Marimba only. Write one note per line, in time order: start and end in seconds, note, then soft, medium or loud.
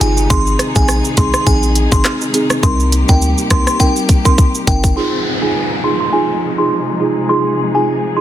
0.01 0.20 D#4 medium
0.01 0.20 F4 medium
0.01 0.21 G#4 medium
0.30 0.49 C4 medium
0.30 0.49 D#4 medium
0.30 0.50 G#4 loud
0.75 0.92 C4 medium
0.75 0.92 D#4 medium
0.75 0.92 G#4 medium
1.17 1.37 C4 medium
1.17 1.37 D#4 medium
1.17 1.37 G#4 medium
1.46 1.66 C4 loud
1.46 1.66 D#4 medium
1.46 1.66 G#4 loud
1.92 2.09 C4 medium
1.92 2.09 D#4 medium
1.92 2.09 G#4 medium
2.34 2.53 C4 medium
2.34 2.53 D#4 medium
2.34 2.54 G#4 medium
2.63 2.82 C4 medium
2.63 2.82 D#4 medium
2.63 2.83 A#4 loud
3.08 3.25 C4 medium
3.08 3.25 D#4 medium
3.08 3.25 A#4 medium
3.51 3.70 C4 medium
3.51 3.70 D#4 medium
3.51 3.70 A#4 medium
3.80 3.99 C4 medium
3.80 3.99 D#4 medium
3.80 3.99 A#4 loud
4.25 4.42 C4 medium
4.25 4.42 D#4 medium
4.25 4.42 A#4 medium
4.67 4.86 C4 medium
4.67 4.86 D#4 medium
4.67 4.87 A#4 medium
4.96 5.15 D#4 medium
4.96 5.15 F4 medium
4.96 5.16 G#4 medium
5.41 5.58 D#4 medium
5.41 5.58 F4 medium
5.41 5.58 G#4 medium
5.83 6.03 D#4 medium
5.83 6.03 F4 medium
5.83 6.03 G#4 medium
6.12 6.32 D#4 medium
6.12 6.32 F4 medium
6.12 6.32 G#4 loud
6.58 6.74 D#4 medium
6.58 6.75 F4 medium
6.58 6.75 G#4 medium
7.00 7.19 D#4 medium
7.00 7.19 F4 medium
7.00 7.19 G#4 medium
7.29 7.48 D#4 medium
7.29 7.48 F4 medium
7.29 7.49 G#4 medium
7.75 7.91 D#4 medium
7.75 7.91 F4 medium
7.75 7.91 G#4 medium
8.16 8.21 D#4 medium
8.16 8.21 F4 medium
8.16 8.21 G#4 medium